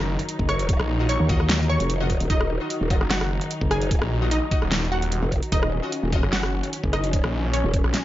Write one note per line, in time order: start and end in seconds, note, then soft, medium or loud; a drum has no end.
0.00 0.17 F#1 loud
0.00 8.05 D#3 medium
0.00 8.05 F#3 medium
0.00 2.29 D#4 loud
0.00 0.41 A#4 medium
0.00 0.41 A#5 loud
0.19 closed hi-hat medium
0.29 closed hi-hat medium
0.39 0.78 F#1 loud
0.39 kick medium
0.49 1.02 C#5 medium
0.49 1.02 C#6 loud
0.49 cross-stick medium
0.49 closed hi-hat medium
0.59 closed hi-hat medium
0.69 kick loud
0.69 closed hi-hat medium
0.80 1.18 A#1 loud
0.80 cross-stick medium
1.00 1.09 F4 medium
1.00 1.09 F#4 medium
1.00 1.09 D#5 medium
1.09 1.62 C#5 medium
1.09 1.62 C#6 loud
1.09 closed hi-hat medium
1.20 1.78 D#2 loud
1.29 1.98 F4 medium
1.29 1.98 F#4 medium
1.29 1.98 D#5 loud
1.29 kick loud
1.29 closed hi-hat medium
1.40 cross-stick medium
1.49 snare loud
1.49 closed hi-hat medium
1.70 2.22 C#5 medium
1.70 2.22 C#6 loud
1.80 2.19 F1 loud
1.80 closed hi-hat medium
1.90 closed hi-hat medium
2.00 2.17 F4 medium
2.00 2.17 F#4 medium
2.00 2.17 D#5 loud
2.10 kick medium
2.10 closed hi-hat medium
2.20 2.28 D#1 loud
2.20 closed hi-hat medium
2.30 2.59 D#1 loud
2.30 5.51 D#4 medium
2.30 3.03 D#4 medium
2.30 3.03 D#5 loud
2.30 kick loud
2.30 closed hi-hat medium
2.41 cross-stick medium
2.61 2.70 F4 medium
2.61 2.70 F#4 medium
2.61 2.70 D#5 medium
2.70 closed hi-hat medium
2.81 2.99 D#1 medium
2.90 3.01 F4 medium
2.90 3.01 F#4 medium
2.90 3.01 D#5 medium
2.90 kick loud
2.90 closed hi-hat medium
3.01 3.19 F#1 loud
3.01 cross-stick medium
3.10 3.63 F#4 medium
3.10 3.63 F#5 loud
3.10 snare loud
3.10 closed hi-hat medium
3.21 3.40 F#1 loud
3.21 cross-stick medium
3.41 closed hi-hat medium
3.51 closed hi-hat medium
3.61 4.00 F#1 loud
3.61 kick medium
3.71 4.24 G#4 medium
3.71 4.24 G#5 loud
3.71 cross-stick medium
3.71 closed hi-hat soft
3.82 closed hi-hat medium
3.91 kick loud
3.91 closed hi-hat medium
4.02 4.40 A#1 loud
4.02 cross-stick medium
4.22 4.32 F4 medium
4.22 4.32 F#4 medium
4.22 4.32 D#5 medium
4.31 4.84 D#4 medium
4.31 4.84 D#5 loud
4.31 closed hi-hat medium
4.51 5.80 D#4 loud
4.51 5.80 F#4 medium
4.51 5.80 D#5 loud
4.51 kick loud
4.51 closed hi-hat medium
4.62 5.21 D#1 loud
4.62 cross-stick medium
4.72 snare loud
4.72 closed hi-hat medium
4.92 5.45 F#4 medium
4.92 5.45 F#5 loud
5.02 closed hi-hat soft
5.12 closed hi-hat medium
5.22 5.41 F1 loud
5.32 kick medium
5.32 closed hi-hat soft
5.43 closed hi-hat medium
5.52 5.81 D#1 loud
5.52 8.05 C#4 loud
5.52 6.25 D#4 medium
5.52 6.25 D#5 loud
5.52 kick loud
5.52 closed hi-hat medium
5.63 cross-stick medium
5.83 5.93 F4 medium
5.83 5.93 F#4 medium
5.83 5.93 D#5 medium
5.92 closed hi-hat medium
6.03 6.21 D#1 medium
6.13 6.23 F4 medium
6.13 6.23 F#4 medium
6.13 6.23 D#5 medium
6.13 kick loud
6.13 closed hi-hat medium
6.23 6.42 F#1 loud
6.23 cross-stick medium
6.33 6.85 F#4 medium
6.33 6.85 F#5 loud
6.33 snare loud
6.33 closed hi-hat medium
6.43 6.62 F#1 loud
6.43 cross-stick medium
6.63 closed hi-hat medium
6.73 closed hi-hat medium
6.84 7.22 F#1 loud
6.84 kick medium
6.93 7.46 D#4 medium
6.93 7.46 D#5 loud
6.93 cross-stick medium
6.93 closed hi-hat medium
7.04 closed hi-hat medium
7.13 kick loud
7.13 closed hi-hat medium
7.24 7.62 A#1 loud
7.24 cross-stick medium
7.53 8.05 C#4 medium
7.53 8.05 C#5 medium
7.53 closed hi-hat medium
7.64 7.83 D#1 medium
7.74 kick loud
7.74 closed hi-hat medium
7.84 7.92 A#1 loud
7.84 cross-stick medium
7.94 snare medium
7.94 closed hi-hat medium